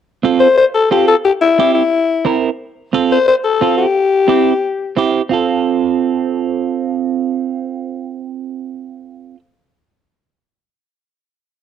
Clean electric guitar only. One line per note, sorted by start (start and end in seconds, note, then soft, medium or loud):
0.23 0.46 C4 medium
0.23 0.47 F4 medium
0.23 0.47 A4 medium
0.91 1.14 C4 medium
0.91 1.14 F4 medium
0.91 1.14 A4 medium
1.59 1.82 C4 medium
1.59 1.82 E4 medium
1.59 1.82 G4 medium
2.25 2.49 C4 medium
2.25 2.49 E4 medium
2.25 2.49 A#4 medium
2.93 3.17 C4 medium
2.93 3.17 F4 medium
2.93 3.18 A4 medium
3.61 3.85 C4 medium
3.61 3.85 F4 medium
3.61 3.86 A4 medium
4.28 4.52 C4 medium
4.28 4.52 E4 medium
4.28 4.53 G4 medium
4.97 5.21 C4 medium
4.97 5.21 E4 medium
4.97 5.21 G4 loud
5.29 9.35 C4 medium
5.29 9.37 F4 medium
5.33 9.39 A4 medium